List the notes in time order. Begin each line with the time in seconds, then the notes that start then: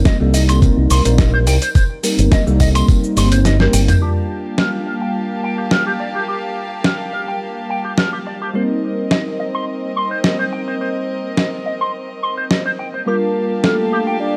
Already playing: G3 A#3 C4 D#4 A#4
0.05 D#5, kick, snare, closed hi-hat, tambourine, shaker
0.20 C2 G3 A#3 C4 D#4 A4
0.34 D#5, open hi-hat, tambourine, shaker
0.49 C6, finger snap, closed hi-hat, tambourine, shaker
0.62 G3 A#3 C4 D#4 A#4, kick, closed hi-hat, tambourine, shaker
0.77 C2
0.90 C2 C6, open hi-hat, tambourine, shaker
1.05 A#1 G3 A#3 C4 D#4 A#4 C5, closed hi-hat, tambourine, shaker
1.18 D#5, kick, snare, closed hi-hat, tambourine, shaker
1.34 C5
1.47 C2 G3 A#3 C4 D#4 A#4 G5, open hi-hat, tambourine, shaker
1.62 C5, closed hi-hat, tambourine, shaker
1.75 C5, kick, closed hi-hat, tambourine, shaker
2.03 G3 A#3 C4 D#4 A#4, open hi-hat, tambourine, shaker
2.19 G1, closed hi-hat, tambourine, shaker
2.32 D#5, kick, snare, closed hi-hat, tambourine, shaker
2.47 C2 G3 A#3 C4 D#4 A4, shaker
2.60 D#5, kick, open hi-hat, tambourine, shaker
2.75 C6, finger snap, closed hi-hat, tambourine, shaker
2.88 G3 A#3 C4 D#4 A#4, kick, closed hi-hat, tambourine, shaker
3.04 shaker
3.16 G1 G3 A#3 C4 D#4 C5 C6, open hi-hat, tambourine, shaker
3.32 C5, closed hi-hat, tambourine, shaker
3.45 D#5, snare, closed hi-hat, tambourine, shaker
3.60 G3 A#3 C4 D#4 A#4 C5, snare
3.73 G1 G5, open hi-hat, tambourine, shaker
3.88 C5, closed hi-hat, mid tom, tambourine, shaker
4.01 G3 A#3 D4 F4 G4 F5 A5
4.58 A#4, snare
4.87 A#4
5.02 G5
5.43 G5
5.58 G4
5.71 A#4, snare
5.87 G4
6.00 D5
6.15 G4
6.28 G4
6.84 A#4, snare
7.13 A#4
7.28 G5
7.70 G5
7.85 G4
7.98 A#4, snare
8.13 G4
8.27 D5
8.42 G4
8.53 G3 A#3 C4 D#4 A#4 C5 D#5
9.11 D#5, snare
9.40 D#5
9.55 C6
9.96 C6
10.11 C5
10.24 D#5, snare
10.39 C5
10.53 G5
10.68 C5
10.81 C5
11.37 D#5, snare
11.66 D#5
11.81 C6
12.23 C6
12.37 C5
12.51 D#5, snare
12.66 C5
12.79 G5
12.94 C5
13.06 G3 A#3 D4 F4 G4 A#4 F5 A5
13.64 A4 A#4, snare
13.92 G4
14.07 G5
14.20 D5